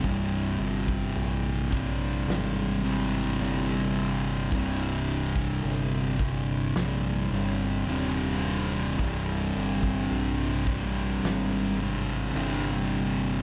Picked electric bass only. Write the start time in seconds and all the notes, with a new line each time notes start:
0.04 C1
0.59 G1
1.16 A#1
2.28 G#1
3.39 G1
4.52 C1
5.63 G1
6.76 A#1
7.31 G1
7.87 D#1
8.99 C1
9.55 G1
10.11 A#1
11.23 G#1
12.35 G1